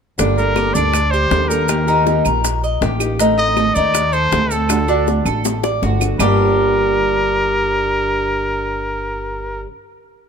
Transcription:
0.18 upright bass G1, nylon-string guitar D3 G3 A#3 D4 A4, cuban tres D4, high bongo, maracas
0.37 nylon-string guitar G3 A#3 D4 A4, trumpet A#4, maracas
0.56 nylon-string guitar G3 A#3 D4 A4, cuban tres G4, high bongo, claves, maracas
0.74 upright bass D2, cuban tres D4, trumpet D5, maracas
0.94 muted nylon-string guitar stroke, high bongo, claves, maracas
1.11 cuban tres G4, trumpet C5, maracas
1.31 upright bass D#2, nylon-string guitar G3 A#3 D4 A4, high bongo, low bongo, maracas
1.49 nylon-string guitar G3 A#3 D4 A4, trumpet A#4, cuban tres A#4, maracas
1.68 nylon-string guitar D#3 A#3 D#4 G4, high bongo, claves, maracas
1.87 nylon-string guitar A#3 D#4 G4, cuban tres D#4, high bongo, maracas
2.05 nylon-string guitar D#3 A#3 D#4 G4, high bongo, maracas
2.25 upright bass A#1, cuban tres A#4, high bongo, claves, maracas
2.44 muted nylon-string guitar stroke, high bongo, maracas
2.64 cuban tres D#5, maracas
2.81 upright bass A1, nylon-string guitar D#3 A#3 D#4 G4, cuban tres G4, high bongo, low bongo, maracas
3.00 nylon-string guitar A#3 D#4 G4, high bongo, claves, maracas
3.19 nylon-string guitar D#3 A3 C4, cuban tres D#4, high bongo, maracas
3.37 nylon-string guitar A3 C4, trumpet D#5, maracas
3.56 nylon-string guitar D#3 A3 C4, cuban tres A4, high bongo, claves, maracas
3.75 upright bass D#2, cuban tres D#4, trumpet D5, maracas
3.94 muted nylon-string guitar stroke, high bongo, claves, maracas
4.13 cuban tres A4, trumpet C5, maracas
4.32 upright bass D2, nylon-string guitar D#3 A3 C4, high bongo, low bongo, maracas
4.51 nylon-string guitar A3 C4, cuban tres A4, trumpet A4, maracas
4.69 nylon-string guitar D3 A3 D4 F#4, high bongo, claves, maracas
4.88 nylon-string guitar A3 D4 F#4, cuban tres D4, high bongo, maracas
5.07 nylon-string guitar D3 A3 D4 F#4, high bongo, maracas
5.25 upright bass A1, cuban tres A4, high bongo, claves, maracas
5.45 muted nylon-string guitar stroke, high bongo, maracas
5.63 cuban tres D5, high bongo, maracas
5.82 upright bass G1, nylon-string guitar D3 A3 D4 F#4, cuban tres F#4, low bongo, maracas
6.00 nylon-string guitar A3 D4 F#4, low bongo, claves, maracas
6.19 upright bass G1, nylon-string guitar G2 D3 G3 A#3 D4, cuban tres G3 D4 G4, trumpet A#4, low bongo, claves, maracas

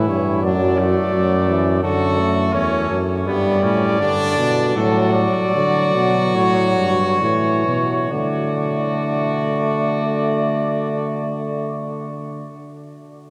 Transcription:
Already playing: euphonium E3, trumpet E4
0.08 bass trombone G2, cornet C#5
0.43 bass trombone F#2, euphonium F#3, trumpet D4, cornet D5
0.79 trumpet A3
1.13 bass trombone F#2, euphonium F#3
1.49 euphonium E3
1.83 bass trombone F#2, euphonium D3, trumpet F#4, cornet A4
2.19 euphonium A3
2.54 bass trombone E2, trumpet C#4, cornet C#5
2.90 bass trombone F#2
3.26 bass trombone G2, euphonium G3, trumpet B3, cornet D5
3.63 bass trombone A2, trumpet C#4
4.00 bass trombone G2, euphonium D3, trumpet D4
4.38 bass trombone B2
4.76 bass trombone A2, euphonium F#3, trumpet F#4, cornet A4
5.14 cornet D5
5.55 bass trombone D3, euphonium F#3
5.95 bass trombone B2
6.36 bass trombone A2, cornet C#5
6.78 bass trombone G2
7.21 bass trombone A2, euphonium E3, cornet C#5
7.67 bass trombone B2
8.11 bass trombone D3, euphonium A3, trumpet F#4, cornet D5

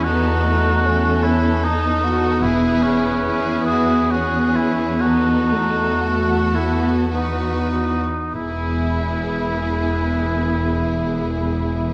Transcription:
Already playing: cello section E2
0.04 viola section B3, violin section D#4 A4, oboe F#4
0.44 viola section A3
0.84 viola section A3, violin section C#4 A4
1.23 viola section B3, oboe E4
1.64 oboe D#4, violin section D#4
2.05 violin section F#4
2.43 double bass section E1, cello section E2, oboe E4, violin section E4 G#4
2.83 oboe C#4
3.24 violin section E4 G#4
3.66 violin section F#4, oboe G#4
4.10 violin section C#4 G#4, oboe F#4
4.55 oboe E4
5.00 viola section B3, violin section D#4 A4, oboe F#4
5.51 viola section A3
6.01 viola section A3, violin section F#4
6.55 viola section B3, oboe E4
7.11 viola section B3, oboe D#4, violin section F#4 B4
8.34 double bass section E1, cello section E2, viola section B3, violin section E4 G#4, oboe E4

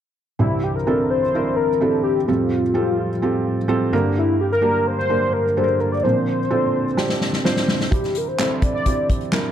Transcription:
0.39 felt piano C2 G2 C4 D4 E4 G4, tonewheel organ D3 E3 C4, soft synth lead E4
0.63 soft synth lead G4
0.75 soft synth lead A#4
0.87 felt piano C4 D4 E4 A4
1.10 soft synth lead C5
1.21 soft synth lead C5
1.35 felt piano C4 D4 E4 A#4
1.56 soft synth lead A#4
1.81 felt piano C4 D4 E4 G4, soft synth lead A4
2.03 soft synth lead G4
2.15 soft synth lead G4
2.26 felt piano F2 C3 C4 F4 G4 A4, tonewheel organ A2 F3 G3, soft synth lead F4
2.74 felt piano C4 F4 G4 A4
3.22 felt piano C4 F4 G4 A4
3.68 felt piano C4 F4 G4 A4
3.93 tonewheel organ G2 D3 A#3, felt piano G2 D3 A#3 D4 G4 A#4
4.18 soft synth lead E4
4.41 soft synth lead G4
4.53 soft synth lead A#4
4.61 felt piano A#3 D4 G4 A#4
4.87 soft synth lead C5
4.99 soft synth lead C5
5.09 felt piano A#3 D4 G4 A#4
5.33 soft synth lead A#4
5.57 felt piano A#3 D4 G4 A4, soft synth lead C5
5.64 felt piano A#4
5.80 soft synth lead A#4
5.92 soft synth lead D5
6.03 felt piano A#2 F3 C4 D4 F4 A#4, tonewheel organ C4, soft synth lead C5
6.50 felt piano C4 D4 F4 A4
6.97 felt piano C4 D4 F4 G4, snare
7.09 snare
7.21 snare
7.33 snare
7.44 felt piano C4 D4 F4 C5, snare
7.57 snare
7.68 snare
7.81 snare
7.91 felt piano C3 G3 C4 D4 E4 G4, tonewheel organ E3, soft synth lead G4, kick, closed hi-hat
8.04 snare, closed hi-hat
8.15 soft synth lead A#4, closed hi-hat
8.28 soft synth lead C5
8.39 felt piano C4 D4 E4 A4, snare, clap, closed hi-hat
8.62 soft synth lead D5, kick, closed hi-hat
8.75 soft synth lead D5
8.86 felt piano C4 D4 E4 G4, kick, closed hi-hat
9.09 kick, closed hi-hat
9.21 closed hi-hat
9.32 felt piano C4 D4 E4 A#4, snare, clap, closed hi-hat

